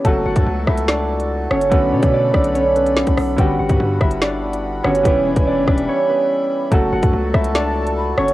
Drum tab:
HH |x--x---xx--x---x|x--x---xx-xx-xo-|x--x---xx--x---x|x--x---x--------|
SD |------r-o-----r-|------r-----o-r-|------r-o-----r-|------r---------|
BD |o--o--o---------|o--o--o------o--|o--o--o---------|o--o--o---------|

HH |x--x---xx--x---x|
SD |------r-o-----r-|
BD |o--o--o---------|